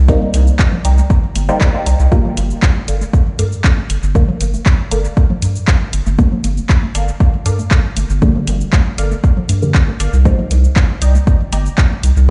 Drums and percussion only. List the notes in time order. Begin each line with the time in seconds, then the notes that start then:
0.08 kick, cabasa
0.22 high conga
0.34 closed hi-hat, cabasa
0.47 cabasa
0.59 kick, clap, high conga, cabasa
0.72 low conga
0.85 closed hi-hat, cabasa
0.98 high conga, cabasa
1.10 kick, cabasa
1.36 closed hi-hat, high conga, cabasa
1.49 cabasa
1.61 kick, clap, cabasa
1.74 high conga
1.86 closed hi-hat, cabasa
2.00 cabasa
2.12 kick, cabasa
2.25 high conga, low conga
2.37 closed hi-hat, cabasa
2.50 cabasa
2.63 kick, clap, high conga, cabasa
2.88 closed hi-hat, cabasa
3.01 high conga, cabasa
3.13 kick, cabasa
3.39 closed hi-hat, high conga, cabasa
3.52 cabasa
3.64 kick, clap, cabasa
3.78 high conga
3.90 closed hi-hat, cabasa
4.03 cabasa
4.15 kick, high conga, cabasa
4.28 low conga
4.41 closed hi-hat, cabasa
4.54 high conga, cabasa
4.66 kick, clap, cabasa
4.91 closed hi-hat, high conga, cabasa
5.05 cabasa
5.17 kick, cabasa
5.30 high conga, low conga
5.42 closed hi-hat, cabasa
5.56 cabasa
5.68 kick, clap, high conga, cabasa
5.93 closed hi-hat, cabasa
6.06 high conga, cabasa
6.19 kick, cabasa
6.32 low conga
6.44 closed hi-hat, high conga, cabasa
6.57 cabasa
6.69 kick, clap, cabasa
6.83 high conga
6.95 closed hi-hat, cabasa
7.08 cabasa
7.20 kick, high conga, cabasa
7.46 closed hi-hat, cabasa
7.59 high conga, cabasa
7.71 kick, clap, cabasa
7.97 closed hi-hat, high conga, cabasa
8.10 cabasa
8.22 kick, cabasa
8.35 high conga, low conga
8.47 closed hi-hat, cabasa
8.61 cabasa
8.73 kick, clap, high conga, cabasa
8.98 closed hi-hat, cabasa
9.12 high conga, cabasa
9.24 kick, cabasa
9.37 low conga
9.49 closed hi-hat, high conga, cabasa
9.62 cabasa
9.75 kick, clap, cabasa
9.88 high conga
10.00 closed hi-hat, cabasa
10.13 cabasa
10.25 kick, cabasa
10.39 high conga, low conga
10.51 closed hi-hat, cabasa
10.64 cabasa
10.76 kick, clap, high conga, cabasa
11.02 closed hi-hat, cabasa
11.15 high conga, cabasa
11.27 kick, cabasa
11.52 closed hi-hat, high conga, cabasa
11.66 cabasa
11.78 kick, clap, cabasa
11.91 high conga
12.03 closed hi-hat, cabasa
12.17 cabasa